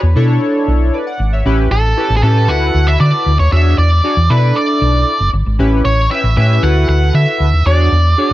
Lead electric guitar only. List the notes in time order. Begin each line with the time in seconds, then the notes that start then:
1.71 A4
2.17 G#4
2.23 A4
2.49 F#5
2.88 E5
3.00 D5
3.39 C#5
3.52 E5
3.78 D5
4.30 B4
4.56 D5
5.85 C#5
6.11 E5
6.37 E5
6.63 F#5
6.89 F#5
7.15 E5
7.67 D5